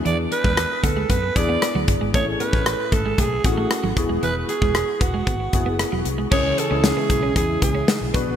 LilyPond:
<<
  \new Staff \with { instrumentName = "Alto saxophone" } { \time 4/4 \key cis \phrygian \tempo 4 = 115 d''8 b'4 a'8 b'8 d''4 r8 | cis''8 b'4 a'8 gis'8 fis'4 r8 | b'8 gis'4 fis'4. r4 | cis''8 a'8 gis'4 gis'8 gis'4 r8 | }
  \new Staff \with { instrumentName = "Grand piano" } { \time 4/4 \key cis \phrygian <b d' e' gis'>4 r4. <b d' e' gis'>4 r8 | <a cis' e' gis'>4~ <a cis' e' gis'>16 r4 r16 <a cis' e' gis'>4 <b e' fis' gis'>8~ | <b e' fis' gis'>4 r4. <b e' fis' gis'>4 r8 | <gis cis' e' gis'>8 r16 <gis cis' e' gis'>4~ <gis cis' e' gis'>16 r4. <b d' fis' b'>8 | }
  \new Staff \with { instrumentName = "Grand piano" } { \clef bass \time 4/4 \key cis \phrygian e4 r2. | a,4. r2 e8~ | e4 r2. | cis4. r2 b,8 | }
  \new Staff \with { instrumentName = "Clean electric guitar" } { \time 4/4 \key cis \phrygian e16 r8 gis16 r8 b16 gis16 b16 r8 b16 r16 fis16 r16 gis16 | a16 r16 b16 r8. a16 gis16 a16 r8 a16 r16 fis16 r16 gis16 | e16 r8 gis16 r8 b16 gis16 b16 r8 b16 r16 fis16 r16 gis16 | cis'16 r8 cis'16 r16 b16 r16 cis'16 r8 b16 cis'16 r8 b16 r16 | }
  \new Staff \with { instrumentName = "Analog synth pad" } { \clef bass \time 4/4 \key cis \phrygian r1 | r1 | r1 | <cis e gis e'>2.~ <cis e gis e'>8 <d fis b fis'>8 | }
  \new Staff \with { instrumentName = "Fingered electric bass" } { \clef bass \time 4/4 \key cis \phrygian e,8 r16 e,8 r16 d,8 fis,8 e,8 r16 d,16 g,,16 gis,,16 | a,,8 r16 a,,8 r16 gis,,8 b,,8 a,,8 r16 gis,,16 e,,16 dis,,16 | e,,8 r16 e,,8 r16 e,,8 gis,,8 fis,,8. e,,16 c,8 | cis,8 r16 cis,8 r16 b,,8 e,8 cis,8 r16 b,,16 b,,16 ais,,16 | }
  \new DrumStaff \with { instrumentName = "Drums" } \drummode { \time 4/4 hh8 hh16 bd16 <hh ss>8 <hh bd>8 <hh bd>8 <hh bd>8 <hh ss>8 <hh bd>8 | <hh bd>8 hh16 bd16 <hh ss>8 <hh bd>8 <hh bd>8 <hh bd>8 <hh ss>8 <hh bd>8 | hh8 hh16 bd16 <hh ss>8 <hh bd>8 <hh bd>8 <hh bd>8 <hh ss>8 hh8 | <cymc bd>8 hh8 <hh sn>8 <hh bd>8 <hh bd>8 <hh bd>8 <hh sn>8 <hh bd>8 | }
>>